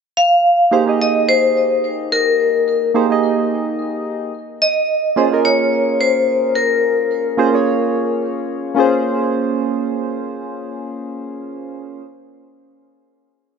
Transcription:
0.17 0.68 F5 loud
0.71 0.83 A#3 medium
0.71 0.84 D#4 medium
0.71 0.84 G4 medium
0.71 0.84 G#4 medium
0.71 0.84 C5 medium
0.86 2.90 A#3 medium
0.86 2.91 D#4 medium
0.86 2.91 G4 medium
0.86 2.91 G#4 medium
0.86 2.92 D#5 medium
1.02 1.29 D#5 loud
1.29 1.80 C5 medium
2.12 2.91 A#4 loud
2.94 3.06 A#3 medium
2.94 3.06 D#4 medium
2.94 3.06 G4 medium
2.94 3.07 G#4 medium
2.94 3.07 C5 medium
3.09 4.31 A#3 medium
3.09 4.32 D#4 medium
3.09 4.32 G4 medium
3.09 4.32 G#4 medium
3.09 4.33 D#5 medium
4.62 5.47 D#5 loud
5.16 5.28 A#3 medium
5.16 5.28 C#4 medium
5.16 5.28 F4 medium
5.16 5.29 G#4 medium
5.16 5.29 C5 medium
5.30 7.35 A#3 medium
5.30 7.35 C#4 medium
5.30 7.36 F4 medium
5.30 7.36 G#4 medium
5.30 7.36 A#4 medium
5.45 6.02 C#5 medium
6.01 6.57 C5 loud
6.55 8.18 A#4 medium
7.37 7.50 A#3 medium
7.37 7.50 C#4 medium
7.37 7.50 F4 medium
7.37 7.50 G#4 medium
7.37 7.51 C5 medium
7.52 8.73 A#3 medium
7.52 8.75 C#4 medium
7.52 8.76 F4 medium
7.52 8.76 G#4 medium
7.52 8.76 C#5 medium
8.75 12.01 A#3 medium
8.75 12.02 C#4 medium
8.75 12.03 F4 medium
8.75 12.04 G#4 medium
8.80 12.06 C5 medium

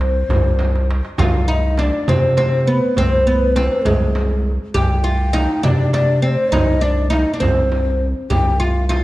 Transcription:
0.00 0.24 C2 medium
0.00 0.85 C4 medium
0.00 0.88 C5 medium
0.00 darbuka tek medium
0.29 1.02 C2 loud
0.29 frame drum medium
0.29 darbuka dum loud
0.59 darbuka tek medium
0.59 frame drum medium
0.76 darbuka ka medium
0.91 darbuka tek medium
1.05 darbuka ka medium
1.18 1.91 C2 loud
1.18 1.47 F4 medium
1.18 1.47 F5 medium
1.18 1.22 G5 medium
1.18 frame drum medium
1.18 darbuka dum medium
1.47 1.78 D#4 medium
1.47 1.53 F5 medium
1.52 1.78 D#5 medium
1.78 2.08 D4 medium
1.78 1.84 D#5 medium
1.78 darbuka tek medium
1.78 frame drum medium
1.83 2.11 D5 medium
2.08 2.80 C3 medium
2.08 2.36 C4 medium
2.08 2.38 C5 medium
2.08 frame drum medium
2.08 darbuka dum medium
2.37 2.68 C4 medium
2.37 2.68 C5 medium
2.37 darbuka tek medium
2.37 frame drum medium
2.67 2.98 B3 medium
2.67 2.99 B4 medium
2.83 darbuka ka soft
2.96 3.69 C2 loud
2.96 3.25 C4 medium
2.96 3.28 C5 medium
2.96 darbuka dum medium
2.96 frame drum medium
3.27 3.57 B3 medium
3.27 3.88 B4 medium
3.56 3.87 C4 medium
3.56 darbuka tek medium
3.56 frame drum medium
3.85 4.58 C2 medium
3.85 4.49 G#3 medium
3.85 4.53 G#4 medium
3.85 frame drum medium
3.85 darbuka dum medium
4.15 darbuka tek medium
4.15 frame drum medium
4.61 darbuka ka soft
4.74 5.47 C2 loud
4.74 5.03 G4 medium
4.74 4.84 G5 medium
4.74 frame drum medium
4.74 darbuka dum medium
4.82 4.91 G#5 medium
4.90 5.66 G5 medium
5.04 5.33 F4 medium
5.33 5.63 D#4 medium
5.33 darbuka tek medium
5.33 frame drum medium
5.63 6.37 C3 loud
5.63 5.93 D4 medium
5.63 5.69 D#5 medium
5.63 frame drum medium
5.63 darbuka dum medium
5.68 5.94 D5 medium
5.93 6.22 D4 medium
5.93 6.22 D5 medium
5.93 darbuka tek medium
5.93 frame drum medium
6.22 6.52 C4 medium
6.22 6.29 D5 medium
6.28 6.55 C5 medium
6.39 darbuka ka soft
6.52 7.25 C2 loud
6.52 6.81 D#4 medium
6.52 6.85 D#5 medium
6.52 frame drum loud
6.52 darbuka dum medium
6.81 7.10 D4 medium
6.81 7.13 D5 medium
6.81 darbuka ka soft
7.10 7.33 D#4 medium
7.10 7.17 F5 medium
7.10 darbuka tek medium
7.10 frame drum medium
7.16 7.40 D#5 medium
7.34 7.41 D4 medium
7.40 8.14 C2 medium
7.40 8.04 C4 medium
7.40 8.04 C5 medium
7.40 frame drum medium
7.40 darbuka dum medium
7.72 darbuka tek medium
7.72 frame drum medium
8.30 9.03 C2 medium
8.30 8.59 G4 medium
8.30 8.60 G5 medium
8.30 frame drum medium
8.30 darbuka dum medium
8.60 8.88 F4 medium
8.60 8.66 G5 medium
8.65 8.88 F5 medium
8.89 9.04 F4 medium
8.89 9.04 F5 medium
8.89 darbuka tek medium
8.89 frame drum medium

